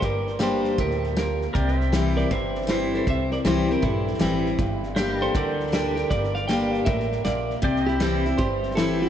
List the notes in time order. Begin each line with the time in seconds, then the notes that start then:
Already playing: A#4 D5 G5
0.02 G1 G2 A#4 D5, kick, snare
0.27 snare
0.39 G3 A#3 D4 G4, snare, hi-hat pedal
0.43 C5
0.64 snare
0.78 D2 A2 G4 A#4, kick, snare
0.91 snare
1.04 snare
1.17 A#2 G4 A#4, snare, hi-hat pedal
1.41 snare
1.54 C2 C3 A#4 D5 G5, kick, snare
1.68 snare
1.79 C5 E5, snare
1.92 E3 G3 C4 E4, snare, hi-hat pedal
2.17 A#4 D5, snare
2.31 G1 G2 C5 E5, kick, snare
2.55 snare
2.62 snare
2.67 E3 G3 C4 E4 G4 C5, snare, hi-hat pedal
2.94 A4 C5, snare
3.07 C2 C3 C5 E5, kick, snare
3.31 A#4 D5, snare
3.45 C2 E3 G3 C4 E4 G4 C5, snare, hi-hat pedal
3.69 C4 E4 G4 A#4, snare
3.82 A#1 G2 E4 A4, kick, snare
4.07 snare
4.14 snare
4.19 A1 E3 G3 C4 E4 G4, snare, hi-hat pedal
4.46 snare
4.59 G1 G2, kick, snare
4.83 snare
4.96 G3 A#3 D4 G4 C5 E5 G5, snare, hi-hat pedal
5.21 A4 A#4 C5 D5, snare
5.35 D2 D3 A#4 D5, kick, snare
5.60 snare
5.67 snare
5.72 G3 A#3 D4 G4 A#4, snare, hi-hat pedal
5.96 D4 G4 A#4, snare
6.10 G1 G2 A#4 D5, kick, snare
6.24 snare
6.35 D5 F5, snare
6.48 G3 A#3 D4 G4 D5 G5, snare, hi-hat pedal
6.71 D5 F5, snare
6.85 A1 A2 A#4 E5, kick, snare
7.00 snare
7.12 snare
7.25 A#1 A#2 A#4 D5, snare, hi-hat pedal
7.50 snare
7.62 C2 C3 C5 D5 G5, kick, snare
7.76 snare
7.87 E4 G4 E5, snare
8.00 E3 G3 C4 E4, snare, hi-hat pedal
8.26 C4 E4, snare
8.38 G1 G2 G4 C5, kick, snare
8.63 snare
8.71 snare
8.75 E3 G3 C4 E4 A4, snare, hi-hat pedal
9.00 E4 G4, snare